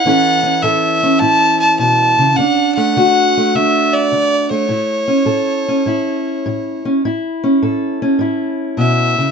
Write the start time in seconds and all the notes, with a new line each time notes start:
Already playing: F#5
0.05 A2 E3 C#4 E4 A4
0.43 C#4
0.62 A2 A4 E5
1.03 C#4
1.19 A2 E4 A5
1.60 A5
1.79 B2 A5
2.19 C#3
2.36 D3 D4 F#5
2.75 A3 F#5
2.96 D3 F#4
3.37 A3
3.55 D3 D4 E5
3.93 D5
4.12 D3
4.50 A3 C#5
4.69 A2 E4
5.08 C#4
5.25 A2 A4
5.68 C#4
5.86 A2 E4
6.46 A2
6.85 C#4
7.05 A2 E4
7.44 C#4
7.63 A2 A4
8.02 C#4
8.19 A2 E4
8.77 B2 E5
9.18 C#3